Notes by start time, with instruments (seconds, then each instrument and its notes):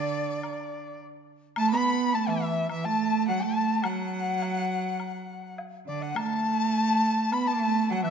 Already playing: cello D3, dizi D5, erhu D5
0.43 high woodblock
1.56 cello A3, dizi A5, erhu A5, high woodblock
1.69 cello B3, dizi B5
1.73 erhu B5
2.13 cello A3, dizi A5, erhu A5
2.27 cello E3, dizi E5, erhu E5
2.70 cello E3, dizi E5, erhu E5, high woodblock
2.85 cello A3, erhu A5, dizi A5
3.27 cello F#3, dizi F#5, erhu F#5
3.42 cello A3, dizi A5, erhu A5
3.77 dizi A5
3.83 cello F#3, dizi F#5, erhu F#5, high woodblock
4.42 high woodblock, low woodblock
5.00 high woodblock
5.58 low woodblock
5.87 cello D3, dizi D5, erhu D5
6.02 dizi F#5, erhu F#5
6.15 cello A3, erhu A5, dizi A5, high woodblock
7.32 cello B3, dizi B5, erhu B5, high woodblock
7.46 cello A3, dizi A5, erhu A5
7.90 cello F#3, erhu F#5, dizi F#5
8.03 cello E3, erhu E5, dizi F#6